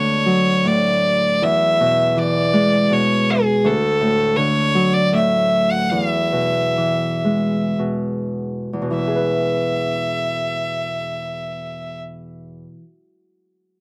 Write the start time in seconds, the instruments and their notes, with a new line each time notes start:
Already playing: harp D2 D3 B3 E5, fiddle C#5
0.26 harp F#3
0.65 harp A2, fiddle D5
1.42 harp E2, fiddle E5
1.80 harp B2
2.16 harp E3, fiddle D5
2.53 harp G#3
2.91 harp B2, fiddle C#5
3.30 fiddle G#4
3.64 harp D2, fiddle A4
4.01 harp A2
4.36 harp D3, fiddle C#5
4.75 harp F#3
4.94 fiddle D5
5.13 harp A2, fiddle E5
5.71 fiddle F#5
5.90 harp E2, fiddle F5
6.09 fiddle E5
6.33 harp B2
6.77 harp E3
7.25 harp G#3
7.79 harp B2
8.73 harp E2
8.82 harp B2
8.90 harp E3
8.95 fiddle E5
8.99 harp B3
9.07 harp G#4
9.16 harp B4